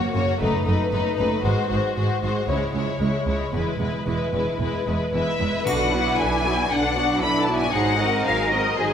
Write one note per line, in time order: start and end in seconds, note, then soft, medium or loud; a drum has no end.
0.00 0.12 F#2 medium
0.00 0.41 F#2 medium
0.00 0.12 A#3 medium
0.00 0.23 A#3 soft
0.00 0.13 F#4 soft
0.00 2.13 F#4 soft
0.00 0.43 A#4 medium
0.00 0.12 C#5 soft
0.07 0.43 C#4 soft
0.13 0.24 F#1 medium
0.13 0.22 F#2 medium
0.13 0.40 A#3 soft
0.13 0.40 F#4 soft
0.13 0.40 C#5 medium
0.24 0.43 A#3 soft
0.40 0.49 F#1 medium
0.40 0.48 F#2 medium
0.40 1.47 F#2 medium
0.40 1.15 F#2 soft
0.40 0.65 A3 medium
0.40 0.65 D#4 soft
0.40 0.65 B4 medium
0.58 1.27 B3 soft
0.66 0.75 F#1 medium
0.66 0.74 F#2 medium
0.66 0.92 A3 soft
0.66 0.91 D#4 soft
0.66 0.90 B4 soft
0.76 1.47 A4 soft
0.91 1.00 F#1 medium
0.91 1.01 F#2 medium
0.91 1.17 A3 soft
0.91 1.17 D#4 medium
0.91 1.16 B4 soft
0.91 1.47 B4 soft
1.11 2.51 D#4 soft
1.17 1.27 F#1 medium
1.17 1.27 F#2 medium
1.17 1.44 A3 medium
1.17 1.44 D#4 soft
1.17 1.44 B4 medium
1.43 1.52 G#1 medium
1.43 2.51 G#2 medium
1.43 1.53 G#2 medium
1.43 1.70 G#3 medium
1.43 1.69 F#4 medium
1.43 1.69 C5 soft
1.62 2.30 C4 soft
1.70 1.79 G#1 medium
1.70 1.79 G#2 soft
1.70 1.95 G#3 soft
1.70 1.96 F#4 soft
1.70 1.96 C5 soft
1.80 2.82 G#4 soft
1.96 2.05 G#1 soft
1.96 2.05 G#2 soft
1.96 2.20 G#3 soft
1.96 2.22 F#4 soft
1.96 2.22 C5 soft
1.96 2.51 C5 soft
2.22 2.31 G#1 soft
2.22 2.31 G#2 soft
2.22 2.47 G#3 soft
2.22 2.48 F#4 soft
2.22 2.48 C5 soft
2.31 2.50 C4 soft
2.47 2.56 C#2 soft
2.47 3.56 C#3 medium
2.47 2.71 G#3 soft
2.47 2.72 E4 soft
2.47 2.73 C#5 soft
2.65 3.34 C#4 soft
2.73 2.82 C#2 soft
2.73 2.83 C#2 soft
2.73 2.98 G#3 soft
2.73 3.00 E4 soft
2.73 3.00 C#5 soft
2.99 3.07 C#2 soft
2.99 3.08 C#2 soft
2.99 3.24 G#3 soft
2.99 3.27 E4 soft
2.99 3.56 C#5 soft
2.99 3.26 C#5 soft
3.18 3.70 E4 soft
3.25 3.34 C#2 soft
3.25 3.51 G#3 soft
3.25 3.53 E4 soft
3.25 3.53 C#5 soft
3.36 3.56 C#4 soft
3.52 3.61 E1 soft
3.52 3.61 E2 soft
3.52 5.69 E3 soft
3.52 3.78 G#3 soft
3.52 3.80 E4 soft
3.52 3.79 B4 soft
3.72 4.41 E4 soft
3.79 3.87 E1 soft
3.79 3.88 E2 soft
3.79 4.04 G#3 soft
3.79 4.06 E4 soft
3.79 4.06 B4 soft
3.89 4.94 B4 soft
4.05 4.15 E1 soft
4.05 4.15 E2 soft
4.05 4.31 G#3 soft
4.05 4.33 E4 soft
4.05 4.33 B4 soft
4.05 5.13 E5 soft
4.24 5.30 G#4 soft
4.33 4.42 E1 soft
4.33 4.41 E2 soft
4.33 4.59 G#3 soft
4.33 4.60 E4 soft
4.33 4.60 B4 soft
4.60 4.68 E1 soft
4.60 4.68 E2 soft
4.60 4.85 G#3 soft
4.60 5.53 B3 soft
4.60 4.85 E4 soft
4.60 4.87 B4 soft
4.78 5.49 E4 soft
4.86 4.96 E1 soft
4.86 4.95 E2 soft
4.86 5.12 G#3 soft
4.86 5.12 E4 soft
4.86 5.13 B4 soft
4.96 7.76 B4 soft
5.13 5.22 E1 soft
5.13 5.21 E2 soft
5.13 5.40 G#3 soft
5.13 5.38 E4 soft
5.13 5.39 B4 soft
5.13 5.69 E5 soft
5.13 5.64 E5 medium
5.31 5.69 G#4 soft
5.39 5.49 E1 soft
5.39 5.48 E2 soft
5.39 5.66 G#3 soft
5.39 5.66 E4 soft
5.39 5.66 B4 soft
5.50 7.67 B2 soft
5.50 5.69 E4 soft
5.54 7.70 B3 soft
5.59 7.72 D4 soft
5.63 6.40 B2 medium
5.63 5.91 D3 soft
5.63 5.91 D4 soft
5.63 8.93 F#4 soft
5.63 5.91 F#4 soft
5.63 5.91 B4 soft
5.63 triangle soft
5.68 6.13 B1 soft
5.68 6.19 F#5 medium
5.92 6.19 F#3 soft
5.92 6.19 B3 soft
5.92 6.69 E4 soft
5.92 6.19 F#4 soft
5.92 6.19 D5 soft
6.18 6.65 B1 soft
6.18 6.45 D3 soft
6.18 6.44 D4 soft
6.18 6.45 D4 soft
6.18 6.45 B4 soft
6.18 6.71 G#5 medium
6.44 6.70 F#3 soft
6.44 6.70 B3 soft
6.44 6.71 F#4 soft
6.44 6.71 D5 soft
6.69 7.17 B1 soft
6.69 6.94 D3 soft
6.69 6.94 D4 soft
6.69 7.22 D4 soft
6.69 6.95 D4 soft
6.69 6.95 B4 soft
6.69 7.23 F#5 medium
6.96 7.22 F#3 soft
6.96 7.22 B3 soft
6.96 7.22 F#4 soft
6.96 7.22 D5 soft
7.20 7.68 B1 soft
7.20 7.47 D3 soft
7.20 7.47 D4 soft
7.20 7.48 D4 soft
7.20 7.74 E4 soft
7.20 7.47 B4 soft
7.20 7.39 B5 medium
7.41 7.57 A5 medium
7.47 7.72 F#3 soft
7.47 7.73 B3 soft
7.47 7.74 F#4 soft
7.47 7.74 D5 soft
7.56 8.93 G#2 soft
7.56 7.73 G#5 medium
7.61 8.93 C4 soft
7.65 8.93 D#4 soft
7.70 7.98 F#3 soft
7.70 7.98 D#4 soft
7.70 8.93 G#4 soft
7.70 7.97 G#4 soft
7.70 7.97 C5 soft
7.70 8.25 F#5 medium
7.74 8.20 G#1 medium
7.74 7.99 D#4 soft
7.99 8.25 G#3 soft
7.99 8.25 C4 soft
7.99 8.26 F#4 soft
7.99 8.76 A#4 soft
7.99 8.26 D#5 soft
8.25 8.71 G#1 soft
8.25 8.52 F#3 soft
8.25 8.52 D#4 soft
8.25 8.51 G#4 soft
8.25 8.51 C5 soft
8.25 8.51 F5 medium
8.51 8.77 G#3 soft
8.51 8.78 C4 soft
8.51 8.77 F#4 soft
8.51 8.93 D#5 medium
8.51 8.77 D#5 soft
8.77 8.93 G#1 soft
8.77 8.93 F#3 soft
8.77 8.93 D#4 soft
8.77 8.93 G#4 soft
8.77 8.93 C5 soft